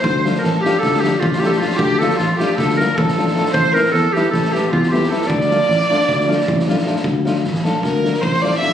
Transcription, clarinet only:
X:1
M:9/8
L:1/16
Q:3/8=103
K:Dm
V:1 name="Clarinet"
c2 z3/2 B/2 z2 G2 A2 G2 F2 G/2 A/2 G F2 | G2 A2 F2 G2 A2 B2 A4 A2 | c2 B2 A2 G2 A2 G2 F2 G2 A2 | d12- d2 z4 |
z16 z2 |]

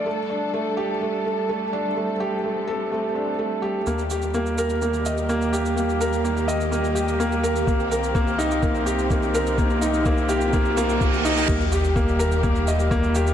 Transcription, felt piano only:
X:1
M:4/4
L:1/8
Q:1/4=126
K:Eblyd
V:1 name="Felt piano"
A, D A, G A, A A, D | A, G A, A A, D A, G | B, G B, B B, e B, G | B, B B, e B, G B, B |
B, B B, E B, G B, B | B, E B, G B, B, B, E | B, G B, B B, e B, G |]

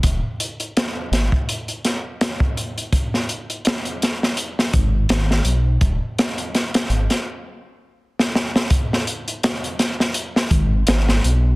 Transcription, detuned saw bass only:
X:1
M:4/4
L:1/8
Q:"Swing 16ths" 1/4=83
K:G#m
V:1 name="Detuned saw bass" clef=bass
D,,, z2 G,,, z4 | z4 z G,,, G,,, B,,, | D,,, z2 G,,, z4 | z4 z G,,, G,,, B,,, |]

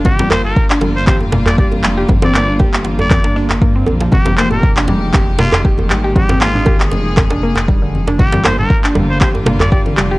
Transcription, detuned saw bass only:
X:1
M:4/4
L:1/8
Q:"Swing 16ths" 1/4=118
K:Gphr
V:1 name="Detuned saw bass" clef=bass
G,,,2 z G,,,4 F,,, | G,,,6 G,, B,,, | F,,,6- F,,, A,,,- | A,,,3 F,,,4- F,,, |
G,,,2 z G,,,4 F,,, |]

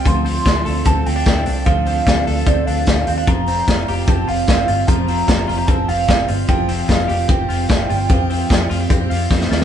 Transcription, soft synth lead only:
X:1
M:4/4
L:1/8
Q:1/4=149
K:Fmix
V:1 name="Soft synth lead"
c'4 a g3 | f4 d f3 | b4 a f3 | b4 a f2 z |
g2 f2 g4- | g6 z2 |]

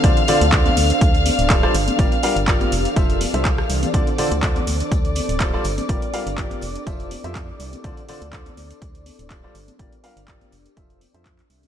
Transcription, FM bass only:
X:1
M:4/4
L:1/16
Q:"Swing 16ths" 1/4=123
K:Dm
V:1 name="FM bass" clef=bass
D,, z2 D,,2 z D,, z D,,2 z D,,,2 z G,,, z | G,,, z2 G,,,2 z F,,, z F,,,2 z C,,2 z C,, z | D,, z2 D,,2 z D,, z D,,2 z D,,,2 z G,,, z | G,,, z2 G,,,2 z F,,, z F,,,2 z F,,2 z C,, z |
D,, z2 D,,2 z D,, z D,,2 z D,,,2 z G,,, z | G,,, z2 G,,,2 z F,,, z F,,,2 z F,,2 z C,, z |]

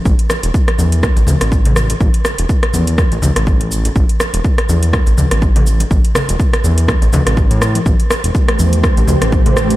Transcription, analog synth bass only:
X:1
M:4/4
L:1/16
Q:"Swing 16ths" 1/4=123
K:Ephr
V:1 name="Analog synth bass" clef=bass
A,,, z2 E,,, z2 E,,2 z A,,, D,, A,,,4 z | A,,, z2 E,,, z2 E,,2 z A,,, D,, A,,,4 z | A,,, z2 E,,, z2 E,,2 z A,,, D,, A,,,4 z | A,,, z2 E,,, z2 E,,2 z A,,, D,, A,,,2 A,,2 z |
A,,, z2 E,,, z2 E,,2 z A,,, D,, A,,,4 z |]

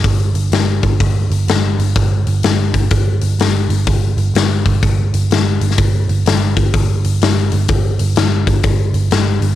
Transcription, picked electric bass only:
X:1
M:4/4
L:1/8
Q:"Swing" 1/4=125
K:C
V:1 name="Picked electric bass" clef=bass
G,,, G,,, G,,, G,,, G,,, G,,, G,,, G,,, | G,,, G,,, G,,, G,,, G,,, G,,, G,,, G,,, | G,,, G,,, G,,, G,,, G,,, G,,, G,,, G,,, | G,,, G,,, G,,, G,,, G,,, G,,, G,,, G,,, |
G,,, G,,, G,,, G,,, G,,, G,,, G,,, G,,, |]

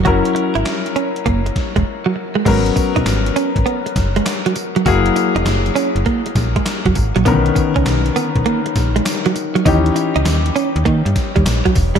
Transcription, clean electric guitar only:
X:1
M:4/4
L:1/16
Q:"Swing 16ths" 1/4=100
K:G#m
V:1 name="Clean electric guitar"
F z2 E z2 C z A, z2 G, z F, z G, | G, z2 D z2 C z B, z2 G, z F, z F, | F z2 D z2 C z A, z2 G, z F, z F, | B, z2 C z2 B, z A, z2 G, z F, z F, |
D z2 D z2 C z A, z2 =G, z F, z G, |]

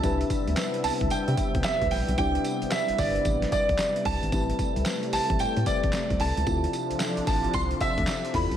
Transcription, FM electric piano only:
X:1
M:4/4
L:1/8
Q:"Swing 16ths" 1/4=112
K:C
V:1 name="FM electric piano"
[DEGB]8 | [DEGd]8 | [CEGB]8 | [CEFA]6- [CEFA] [CEFA] |]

